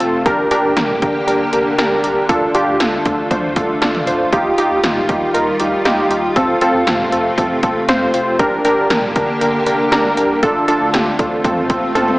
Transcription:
Already playing: C3 A3 F4 A5
0.00 F1 C4 F4 A4, closed hi-hat
0.26 G1 D3 A#3 D4 G4 A#4, kick, closed hi-hat
0.51 D4 G4 A#4, closed hi-hat
0.64 G1
0.77 G1 D4 G4 A#4, snare, closed hi-hat, mid tom
1.02 G1 D4 G4 A#4, kick, closed hi-hat
1.27 G1 D4 G4 A#4, closed hi-hat
1.53 F1 D4 G4 A#4, closed hi-hat
1.78 G1 D4 G4 A#4, snare, closed hi-hat
2.04 C2 D4 G4 A#4, closed hi-hat
2.29 D2 A3 D4 F4 A4, kick, closed hi-hat
2.55 D4 F4 G4, closed hi-hat
2.67 D2
2.80 D2 D4 F4 A4, snare, closed hi-hat
3.05 D2 D4 F4 A4, kick, closed hi-hat
3.31 D2 D4 F4 C5, kick, closed hi-hat, mid tom
3.56 C2 D4 F4 A4, kick, closed hi-hat
3.82 D2 D4 F4 A4, snare, closed hi-hat
3.95 mid tom
4.07 D2 D4 F4 C5, closed hi-hat
4.33 D#2 D#3 G3 D#4 F4 G4, kick, closed hi-hat
4.58 D#4 F4 G4, closed hi-hat
4.71 D#2
4.83 D#2 D#4 F4 G4, snare, closed hi-hat, mid tom
5.09 D#2 D#4 F4 G4, kick, closed hi-hat
5.34 D#2 D#4 F4 A#4, closed hi-hat
5.60 D2 D#4 F4 G4, closed hi-hat
5.85 D#2 D#4 F4 G4, snare, closed hi-hat
6.11 D#2 D#4 F4 G4, closed hi-hat
6.36 F2 C3 A3 C4 F4 A4, kick, closed hi-hat
6.61 C4 F4 A4, closed hi-hat
6.74 F2
6.87 F2 C4 F4 A4, snare, closed hi-hat, mid tom
7.12 F2 C4 F4 A4, closed hi-hat
7.38 F2 C4 F4 A4, kick, closed hi-hat
7.63 D#2 C4 F4 A4, kick, closed hi-hat
7.88 F2 C4 F4 C5, snare, closed hi-hat
8.14 F1 C4 F4 C5, closed hi-hat
8.39 G1 D3 A#3 D4 G4 A#4, kick, closed hi-hat
8.65 D4 G4 A#4, closed hi-hat
8.78 G1
8.90 G1 D4 G4 A#4, snare, closed hi-hat, mid tom
9.16 G1 D4 G4 A#4, kick, closed hi-hat
9.41 G1 D4 G4 A#4, closed hi-hat
9.66 F1 D4 G4 A#4, closed hi-hat
9.92 G1 D4 G4 A#4, snare, closed hi-hat
10.17 C2 D4 G4 A#4, closed hi-hat
10.43 D2 D3 A3 D4 F4 A4, kick, closed hi-hat, swell
10.68 D4 F4 A4, closed hi-hat
10.81 D2
10.93 D2 D4 F4 G4, snare, closed hi-hat
11.19 D2 D4 F4 A4, kick, closed hi-hat
11.44 F2 C3 A3 C4 F4 A4, kick, closed hi-hat, mid tom
11.70 D#2 C4 F4 A4, kick, closed hi-hat
11.95 F2 C4 F4 A4, closed hi-hat, high tom
12.08 mid tom

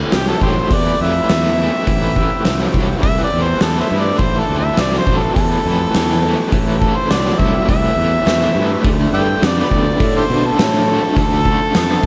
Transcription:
Already playing: E3 C4 E4 G4 B4
0.12 C2 A2 F#3 G4, snare, open hi-hat
0.28 A4
0.41 A1 A2 F#3 G4 A4 C5, kick
0.71 E2 A2 E3 D5, kick, open hi-hat
0.99 F2 A2 E3 E5
1.29 E2 A2 E3, snare, open hi-hat
1.57 A2 E3
1.86 A1 A2 E3 B3 C4 E4 G4, kick, open hi-hat
2.15 A2 E3, kick
2.44 C2 A2 F#3, snare, open hi-hat
2.74 C2 A2 F#3, kick
3.02 C2 A2 E3 E5, kick, open hi-hat
3.24 D5
3.31 E2 A2 E3
3.42 C5
3.60 E2 A2 E3 A4, snare, open hi-hat
3.80 A4 C5 E5
3.89 G2 A2 E3
4.00 D5
4.18 A1 A2 E3 B3 C4 E4 G4 C5, kick, open hi-hat
4.39 A4
4.48 D2 A2 E3
4.59 E5
4.77 C2 A2 F#3 D5, snare, open hi-hat
4.98 C5
5.07 A1 A2 F#3, kick
5.18 A4
5.35 E2 A2 E3 A4, kick, open hi-hat
5.65 F2 A2 E3
5.94 E2 A2 E3, snare, open hi-hat
6.25 A2 E3
6.52 A1 A2 E3 C4 E4 G4 B4, kick, open hi-hat
6.81 A2 E3 A4, kick
6.96 C5
7.10 C2 A2 F#3 D5, snare, open hi-hat
7.38 C2 A2 F#3 E5, kick
7.68 C2 A2 E3 E5, kick, open hi-hat
7.96 E2 A2 E3
8.26 E2 A2 E3, snare, open hi-hat
8.55 G2 A2 E3
8.85 D2 D3 A3 C4 E4 F4 A4, kick, open hi-hat
9.13 G2 D3 A3 D5 E5 G5
9.42 F2 D3 B3 D5, snare, open hi-hat
9.60 G4 B4 D5
9.70 D2 D3 B3, kick
9.99 A2 D3 A3, kick, open hi-hat
10.17 G4 A4 C5
10.28 B2 D3 A3
10.46 A4
10.57 A2 D3 A3, snare, open hi-hat
10.89 D3 A3
11.16 D2 D3 A3 E4 F4 A4 C5, kick, open hi-hat
11.45 D3 A3, kick
11.74 F2 D3 B3, snare, open hi-hat

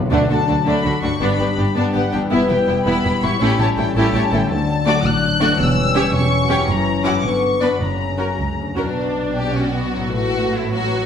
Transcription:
Already playing: B2 D3 F#3 A3 B3
0.02 D4
0.06 F#4
0.11 D2 D3 F#3 A3 D4 F#5
0.30 D2 D3 D4 F#4 A4 A5
0.48 D2 D3 D4 F#4
0.66 D2 D3 A3 D4 B5
0.85 D2 D3 D4 F#4 A4
1.03 D2 G2 D3 D4 F#4 C#6
1.07 G3
1.12 D4
1.16 G4
1.20 G1 G2 G3 B3 D4 B5
1.39 G1 G2 B3 D4 G4 B4
1.58 G1 G2 B3 D4 G4
1.75 G1 G2 B3 D4 A5
1.94 G1 G2 B3 D4 G4 B4 F#5
2.12 G1 E2 G2 B3 D4 G4 G5
2.17 G3
2.22 E4
2.26 B3 E4 B4
2.31 E1 E2 B3 E4 E5
2.49 E1 E2 B3 E4 G4 B4 G5
2.68 E1 E2 B3 E4 G4
2.86 E1 E2 B3 E4 B5
3.04 E1 E2 B3 E4 G4 B4
3.22 E1 E2 A2 B3 E4 G4 C#6
3.28 G3
3.32 E4
3.37 G3 C#4 C#5
3.41 A1 A2 A3 C#4 E4 G4 B5
3.59 A1 A2 A3 E4 G4 C#5 A5
3.77 A1 A2 A3 E4 A4 G5
3.95 A1 A2 A3 C#4 E4 G4 A5
4.13 A1 A2 A3 E4 G4 C#5
4.31 A1 A2 D3 A3 E4 A4 G5
4.37 F#3
4.42 D4
4.46 D2 A4
4.51 F#3 D4 A5
4.86 A3 D4 F#4 D5 D6
5.04 A1 A2 F#3 D4 F#6
5.40 E2 A3 D4 F#4 D5
5.45 G3
5.49 C#4
5.54 C#5
5.58 E1 E2 G3 C#4 E6
5.95 C#4 G4 C#5
6.12 E1 E2 G3 C#4 C#6
6.41 F#3
6.49 F#2 C#4 G4 C#5
6.54 F#3
6.58 E4
6.63 C#5
6.68 F#1 F#2 E3 C#4 A#5
7.04 G2 C#4 E4 F#4 F#5 D6
7.10 B3
7.14 D4
7.19 G1 B4
7.23 G2 D3 B3 C#6
7.61 F#2 B3 D4 B4 D5 B5
7.67 F#3
7.71 F#4
7.76 C#5
7.80 F#1 F#2 C#3 C#4 A#5
8.18 C#4 F#4 A#4
8.38 C#2
8.57 D2
8.76 E2 B2 C#4 D4 F#4 A#4
8.82 F#3
8.87 F#4
8.91 D5
8.96 B1 B2 D4 D5
9.36 G4
9.55 C#4 F#4
9.74 B3
9.94 A2 F#3
10.00 B3
10.05 D#4
10.09 B4
10.13 A1 A2 A3 F#4 B4
10.54 E4
10.72 F#3 F#4

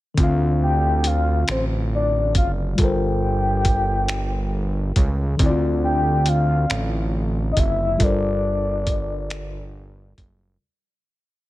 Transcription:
0.14 D2 D3 C4, kick, closed hi-hat
0.20 F4 F5
0.63 G5
1.04 F5, closed hi-hat
1.48 A1 C5, finger snap, closed hi-hat
1.95 D5
2.35 F#1 F5, kick, closed hi-hat
2.75 G1 G3 F4, kick, closed hi-hat
2.80 A4 A#4 G5
2.84 C5
3.65 kick, closed hi-hat
4.08 finger snap, closed hi-hat
4.96 C#2, kick, closed hi-hat
5.37 D2 D3 C4, kick, closed hi-hat
5.43 E4 D5
5.49 F4
5.84 G5
6.26 F5, closed hi-hat
6.70 A1, finger snap, closed hi-hat
7.52 D#5
7.57 F#1 E5, kick, closed hi-hat
7.97 G1 G3 F4, kick, closed hi-hat
8.01 A4 A#4 D5
8.06 C5
8.87 kick, closed hi-hat
9.30 finger snap, closed hi-hat
10.18 F#1, kick, closed hi-hat

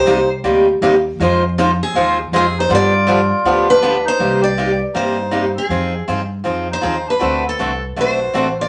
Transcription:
Already playing: D#4 C5
0.06 C2 C3 G3 A#3 D#4 G4
0.43 D2 C3 G3 A#3 D#4 G4
0.81 D#2 C3 G3 A#3 D#4 G4
1.19 F2 F3 G#3 D#4 F4 C5
1.58 F3 G#3 D#4 F4 C5
1.83 C4 G#4
1.94 D#2 F3 G#3 D#4 F4 C5
2.32 F2 F3 G#3 C4 D#4 F4 C5
2.36 G#4
2.58 D#4 C5
2.69 G2 D3 F3 B3 D4 F4 G4
2.75 D5
3.07 D3 F3 B3 D4 G4
3.44 D2 D3 F3 B3 D4 G4
3.69 D4 B4
3.82 D3 F3 B3 D4 G4
4.05 D#4 C5
4.19 C2 C3 G3 A#3 D#4 G4
4.41 G4 D5
4.57 C3 G3 A#3 D#4 G4
4.93 G2 C3 G3 A#3 D#4 G4 C5
5.31 C3 G3 A#3 D#4 G4
5.54 C4 G#4
5.69 F2 F3 C4 D#4 G#4
6.08 G2 F3 C4 D#4 G#4
6.44 F2 F3 C4 D#4 G#4
6.71 D#4 C5
6.81 D#2 F3 C4 D#4 G#4
7.07 D4 B4
7.19 D2 D3 A3 C4 F#4 A4
7.46 C4 A4
7.59 C2 D3 A3 C4 F#4 A4
7.96 B1 D3 A3 C4 F#4 A4
8.01 C5
8.33 A1 D3 A3 C4 F#4 A4
8.59 F4 D5

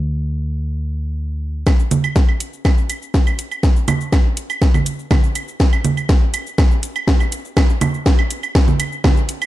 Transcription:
Already playing: D2
1.67 kick, snare, claves, shaker
1.79 shaker
1.91 closed hi-hat, low conga, shaker
2.04 claves, shaker
2.16 kick, snare, shaker
2.29 claves
2.40 closed hi-hat, shaker
2.53 shaker
2.65 kick, snare, claves, shaker
2.78 shaker
2.90 closed hi-hat, claves, shaker
3.02 shaker
3.14 kick, snare, shaker
3.27 claves, shaker
3.39 closed hi-hat, shaker
3.51 claves, shaker
3.63 kick, snare, shaker
3.76 shaker
3.88 closed hi-hat, low conga, claves, shaker
4.01 shaker
4.12 kick, snare, claves, shaker
4.37 closed hi-hat, shaker
4.50 claves, shaker
4.62 kick, snare, shaker
4.74 low conga, claves, shaker
4.86 closed hi-hat, shaker
4.99 shaker
5.11 kick, snare, low conga, claves, shaker
5.24 shaker
5.35 closed hi-hat, claves, shaker
5.48 shaker
5.60 kick, snare, shaker
5.73 claves, shaker
5.85 closed hi-hat, low conga, shaker
5.97 claves, shaker
6.09 kick, snare, shaker
6.34 closed hi-hat, claves, shaker
6.47 shaker
6.58 kick, snare, claves, shaker
6.71 shaker
6.83 closed hi-hat, shaker
6.96 claves, shaker
7.08 kick, snare, shaker
7.20 claves, shaker
7.32 closed hi-hat, shaker
7.45 shaker
7.57 kick, snare, claves, shaker
7.69 shaker
7.81 closed hi-hat, low conga, claves, shaker
7.94 shaker
8.06 kick, snare, shaker
8.19 claves
8.31 closed hi-hat, shaker
8.43 claves, shaker
8.55 kick, snare, shaker
8.68 low conga, shaker
8.80 closed hi-hat, claves, shaker
8.92 shaker
9.04 kick, snare, low conga, claves, shaker
9.17 shaker
9.29 closed hi-hat, shaker
9.42 claves, shaker

